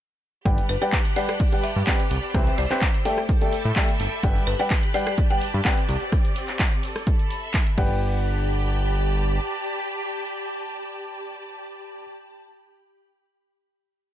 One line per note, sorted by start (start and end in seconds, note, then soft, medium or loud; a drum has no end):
0.45 0.60 G1 loud
0.45 0.64 G3 medium
0.45 2.09 G4 medium
0.45 0.64 G4 medium
0.45 3.53 G4 medium
0.45 0.64 B4 medium
0.45 0.64 D5 medium
0.45 2.09 F#5 medium
0.45 0.64 F#5 medium
0.45 0.64 G5 medium
0.45 3.03 B5 medium
0.45 kick loud
0.45 cross-stick medium
0.45 closed hi-hat medium
0.56 3.53 D5 medium
0.56 closed hi-hat medium
0.62 2.49 A5 medium
0.69 0.77 G1 medium
0.69 0.77 B4 medium
0.69 open hi-hat loud
0.82 0.92 G3 medium
0.82 0.92 G4 medium
0.82 0.89 B4 medium
0.82 0.92 B4 medium
0.82 0.92 D5 medium
0.82 0.92 F#5 medium
0.82 0.92 G5 loud
0.82 closed hi-hat soft
0.92 kick loud
0.92 clap loud
0.92 closed hi-hat medium
1.05 closed hi-hat medium
1.16 1.28 G3 medium
1.16 1.28 G4 medium
1.16 1.28 B4 medium
1.16 1.24 D5 medium
1.16 1.28 D5 medium
1.16 1.28 F#5 medium
1.16 1.28 G5 loud
1.16 open hi-hat loud
1.29 1.36 D5 medium
1.29 cross-stick medium
1.29 open hi-hat medium
1.40 kick loud
1.40 closed hi-hat medium
1.52 1.63 G3 medium
1.52 1.63 G4 medium
1.52 1.63 B4 medium
1.52 1.63 D5 medium
1.52 1.63 F#5 medium
1.52 1.63 G5 medium
1.52 closed hi-hat medium
1.64 1.83 E5 medium
1.64 open hi-hat loud
1.76 1.83 G2 loud
1.87 1.99 C4 medium
1.87 1.99 G4 medium
1.87 1.99 B4 medium
1.87 1.99 D5 medium
1.87 1.99 F#5 medium
1.87 1.99 G5 loud
1.87 kick loud
1.87 clap loud
1.87 closed hi-hat medium
2.00 closed hi-hat medium
2.11 2.18 C2 medium
2.11 3.53 C4 medium
2.11 3.04 C5 medium
2.11 3.04 E6 medium
2.11 open hi-hat loud
2.35 2.49 C2 loud
2.35 2.53 C4 medium
2.35 2.53 G4 medium
2.35 2.53 B4 medium
2.35 2.53 C5 medium
2.35 2.53 E5 medium
2.35 2.53 G5 medium
2.35 kick loud
2.35 cross-stick medium
2.35 closed hi-hat medium
2.47 closed hi-hat medium
2.58 2.66 C2 medium
2.58 3.10 D5 medium
2.58 open hi-hat loud
2.70 2.81 C4 medium
2.70 2.81 G4 medium
2.70 2.81 B4 medium
2.70 2.81 C5 medium
2.70 2.81 E5 medium
2.70 2.81 G5 loud
2.70 clap soft
2.70 closed hi-hat soft
2.81 kick loud
2.81 clap loud
2.81 closed hi-hat medium
2.94 closed hi-hat medium
3.05 3.17 A3 medium
3.05 3.17 G4 medium
3.05 4.90 A4 medium
3.05 3.17 A4 medium
3.05 4.22 A4 medium
3.05 3.17 D5 medium
3.05 3.17 E5 medium
3.05 3.17 G5 loud
3.05 4.22 G5 medium
3.05 4.22 D6 medium
3.05 open hi-hat loud
3.18 cross-stick medium
3.18 closed hi-hat soft
3.29 kick loud
3.29 closed hi-hat medium
3.41 3.52 A3 medium
3.41 3.52 G4 medium
3.41 3.52 A4 medium
3.41 3.52 D5 medium
3.41 3.52 E5 medium
3.41 3.52 G5 medium
3.41 closed hi-hat medium
3.49 4.90 B5 medium
3.49 open hi-hat loud
3.54 4.90 E5 medium
3.65 3.72 A2 loud
3.76 3.88 A3 medium
3.76 3.88 G4 medium
3.76 3.88 A4 medium
3.76 3.88 D5 medium
3.76 3.88 E5 medium
3.76 3.88 G5 loud
3.76 kick loud
3.76 clap loud
3.76 closed hi-hat medium
3.89 closed hi-hat medium
4.00 4.07 G1 medium
4.00 open hi-hat loud
4.23 4.38 G1 loud
4.23 4.42 G3 medium
4.23 5.87 G4 medium
4.23 7.30 G4 medium
4.23 4.42 G4 medium
4.23 4.42 B4 medium
4.23 4.42 D5 medium
4.23 4.42 F#5 medium
4.23 4.42 G5 medium
4.23 6.11 B5 medium
4.23 5.87 F#6 medium
4.23 kick loud
4.23 cross-stick medium
4.23 closed hi-hat medium
4.36 closed hi-hat medium
4.47 4.55 G1 medium
4.47 4.55 B4 medium
4.47 open hi-hat loud
4.59 4.70 G3 medium
4.59 4.70 G4 medium
4.59 4.67 B4 medium
4.59 4.70 B4 medium
4.59 4.70 D5 medium
4.59 4.70 F#5 medium
4.59 4.70 G5 loud
4.59 closed hi-hat soft
4.70 kick loud
4.70 clap loud
4.70 closed hi-hat medium
4.81 7.31 D5 medium
4.81 closed hi-hat medium
4.94 5.06 G3 medium
4.94 5.06 G4 medium
4.94 5.06 B4 medium
4.94 5.02 D5 medium
4.94 5.06 D5 medium
4.94 5.06 F#5 medium
4.94 5.06 G5 loud
4.94 6.27 A5 medium
4.94 open hi-hat loud
5.07 5.14 D5 medium
5.07 cross-stick medium
5.07 open hi-hat medium
5.18 kick loud
5.18 closed hi-hat medium
5.30 5.41 G3 medium
5.30 5.41 G4 medium
5.30 5.41 B4 medium
5.30 5.41 D5 medium
5.30 5.41 F#5 medium
5.30 5.41 G5 medium
5.30 5.94 G5 medium
5.30 closed hi-hat medium
5.41 open hi-hat loud
5.54 5.61 G2 loud
5.65 5.77 C4 medium
5.65 5.77 G4 medium
5.65 5.77 B4 medium
5.65 5.77 D5 medium
5.65 5.77 F#5 medium
5.65 5.77 G5 loud
5.65 kick loud
5.65 clap loud
5.65 closed hi-hat medium
5.78 closed hi-hat medium
5.89 5.96 C2 medium
5.89 7.31 C4 medium
5.89 6.12 C5 medium
5.89 6.12 E6 medium
5.89 open hi-hat loud
6.12 kick loud
6.12 cross-stick medium
6.12 closed hi-hat medium
6.25 closed hi-hat medium
6.36 open hi-hat loud
6.48 clap soft
6.48 closed hi-hat soft
6.59 kick loud
6.59 clap loud
6.59 closed hi-hat medium
6.72 closed hi-hat soft
6.83 7.78 A4 medium
6.83 open hi-hat loud
6.96 cross-stick medium
6.96 open hi-hat medium
7.07 kick loud
7.07 closed hi-hat medium
7.12 7.78 B5 medium
7.19 closed hi-hat soft
7.30 open hi-hat loud
7.37 7.78 E5 medium
7.54 kick loud
7.54 clap loud
7.54 closed hi-hat medium
7.67 closed hi-hat medium
7.78 9.39 G1 loud
7.78 12.03 G4 medium
7.78 12.03 B4 medium
7.78 12.03 D5 medium
7.78 12.03 F#5 medium
7.78 12.03 G5 loud
7.78 12.03 B5 medium
7.78 kick loud
7.78 crash medium
7.85 12.10 D5 medium
8.16 12.41 A5 medium